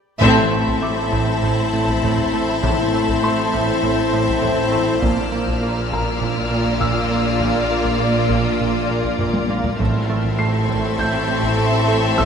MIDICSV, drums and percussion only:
0, 0, Header, 1, 2, 480
1, 0, Start_track
1, 0, Tempo, 603622
1, 161, Time_signature, 4, 2, 24, 8
1, 3517, Tempo, 597015
1, 9811, End_track
2, 0, Start_track
2, 0, Title_t, "Taiko and cinematic ensemble drums"
2, 174, Note_on_c, 9, 41, 95
2, 253, Note_off_c, 9, 41, 0
2, 536, Note_on_c, 9, 41, 74
2, 615, Note_off_c, 9, 41, 0
2, 893, Note_on_c, 9, 41, 75
2, 973, Note_off_c, 9, 41, 0
2, 1132, Note_on_c, 9, 41, 73
2, 1211, Note_off_c, 9, 41, 0
2, 1495, Note_on_c, 9, 41, 81
2, 1574, Note_off_c, 9, 41, 0
2, 1614, Note_on_c, 9, 43, 55
2, 1694, Note_off_c, 9, 43, 0
2, 1736, Note_on_c, 9, 43, 48
2, 1816, Note_off_c, 9, 43, 0
2, 2095, Note_on_c, 9, 41, 100
2, 2174, Note_off_c, 9, 41, 0
2, 2455, Note_on_c, 9, 41, 67
2, 2535, Note_off_c, 9, 41, 0
2, 2812, Note_on_c, 9, 41, 72
2, 2892, Note_off_c, 9, 41, 0
2, 3047, Note_on_c, 9, 41, 64
2, 3126, Note_off_c, 9, 41, 0
2, 3408, Note_on_c, 9, 41, 72
2, 3487, Note_off_c, 9, 41, 0
2, 3526, Note_on_c, 9, 43, 54
2, 3606, Note_off_c, 9, 43, 0
2, 3645, Note_on_c, 9, 43, 41
2, 3725, Note_off_c, 9, 43, 0
2, 3999, Note_on_c, 9, 41, 94
2, 4079, Note_off_c, 9, 41, 0
2, 4361, Note_on_c, 9, 41, 64
2, 4441, Note_off_c, 9, 41, 0
2, 4720, Note_on_c, 9, 41, 66
2, 4800, Note_off_c, 9, 41, 0
2, 4961, Note_on_c, 9, 41, 69
2, 5042, Note_off_c, 9, 41, 0
2, 5316, Note_on_c, 9, 41, 66
2, 5396, Note_off_c, 9, 41, 0
2, 5438, Note_on_c, 9, 43, 49
2, 5518, Note_off_c, 9, 43, 0
2, 5554, Note_on_c, 9, 43, 45
2, 5634, Note_off_c, 9, 43, 0
2, 5916, Note_on_c, 9, 41, 90
2, 5997, Note_off_c, 9, 41, 0
2, 6273, Note_on_c, 9, 41, 67
2, 6353, Note_off_c, 9, 41, 0
2, 6631, Note_on_c, 9, 41, 75
2, 6712, Note_off_c, 9, 41, 0
2, 6873, Note_on_c, 9, 41, 64
2, 6954, Note_off_c, 9, 41, 0
2, 7234, Note_on_c, 9, 41, 62
2, 7314, Note_off_c, 9, 41, 0
2, 7349, Note_on_c, 9, 45, 75
2, 7429, Note_off_c, 9, 45, 0
2, 7466, Note_on_c, 9, 48, 75
2, 7547, Note_off_c, 9, 48, 0
2, 7588, Note_on_c, 9, 48, 76
2, 7668, Note_off_c, 9, 48, 0
2, 7713, Note_on_c, 9, 43, 76
2, 7793, Note_off_c, 9, 43, 0
2, 7836, Note_on_c, 9, 41, 89
2, 7916, Note_off_c, 9, 41, 0
2, 8196, Note_on_c, 9, 41, 64
2, 8276, Note_off_c, 9, 41, 0
2, 8551, Note_on_c, 9, 41, 76
2, 8632, Note_off_c, 9, 41, 0
2, 8793, Note_on_c, 9, 41, 62
2, 8873, Note_off_c, 9, 41, 0
2, 9153, Note_on_c, 9, 41, 77
2, 9234, Note_off_c, 9, 41, 0
2, 9757, Note_on_c, 9, 41, 95
2, 9811, Note_off_c, 9, 41, 0
2, 9811, End_track
0, 0, End_of_file